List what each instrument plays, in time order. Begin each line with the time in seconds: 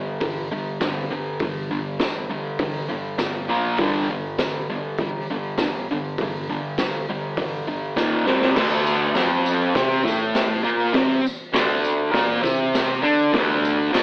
Already playing: distorted electric guitar G2 D3
0.20 distorted electric guitar G2 D3, kick, open hi-hat
0.52 distorted electric guitar G2 D3
0.81 distorted electric guitar G2 D3, kick, snare, open hi-hat, tambourine
1.11 distorted electric guitar G2 D3
1.39 distorted electric guitar G2 D3, kick, open hi-hat
1.71 distorted electric guitar G2 D3
1.99 distorted electric guitar G2 D3, kick, snare, open hi-hat, tambourine
2.30 distorted electric guitar G2 D3
2.59 distorted electric guitar G2 D3, kick, open hi-hat
2.90 distorted electric guitar G2 D3
3.18 distorted electric guitar G2 D3, kick, snare, open hi-hat, tambourine
3.48 distorted electric guitar A#2 F3 A#3
3.77 distorted electric guitar G2 D3 G3, kick, open hi-hat
4.11 distorted electric guitar G2 D3
4.38 distorted electric guitar G2 D3, kick, snare, open hi-hat, tambourine
4.70 distorted electric guitar G2 D3
4.98 distorted electric guitar G2 D3, kick, open hi-hat
5.30 distorted electric guitar G2 D3
5.57 distorted electric guitar G2 D3, kick, snare, open hi-hat, tambourine
5.91 distorted electric guitar G2 D3
6.18 distorted electric guitar G2 D3, kick, open hi-hat
6.50 distorted electric guitar G2 D3
6.78 distorted electric guitar G2 D3, kick, snare, open hi-hat, tambourine
7.09 distorted electric guitar G2 D3
7.37 distorted electric guitar G2 D3, kick, open hi-hat
7.67 distorted electric guitar G2 D3
7.96 distorted electric guitar D#2 A#2 D#3, kick, snare, tambourine
8.26 distorted electric guitar C3 G3 C4, snare
8.42 snare
8.55 distorted electric guitar D2 D3, kick, snare, crash, tambourine
8.87 tambourine
9.15 distorted electric guitar F2 F3, snare, open hi-hat, tambourine
9.46 tambourine
9.75 distorted electric guitar C3 C4, kick, snare, open hi-hat, tambourine
10.04 distorted electric guitar A2 A3, kick, tambourine
10.35 snare, open hi-hat, tambourine
10.63 distorted electric guitar A#2 A#3, tambourine
10.93 distorted electric guitar C3 C4, kick, snare, open hi-hat, tambourine
11.22 muted distorted electric guitar stroke
11.26 tambourine
11.53 distorted electric guitar D2 D3, snare, open hi-hat, tambourine
11.84 tambourine
12.12 distorted electric guitar A#2 A#3, kick, snare, open hi-hat, tambourine
12.42 distorted electric guitar C3 C4, kick, tambourine
12.75 snare, open hi-hat, tambourine
13.02 distorted electric guitar D3 D4
13.06 tambourine
13.32 distorted electric guitar D2 D3, kick, snare, open hi-hat
13.36 tambourine
13.65 tambourine
13.92 distorted electric guitar F2 F3, snare, open hi-hat, tambourine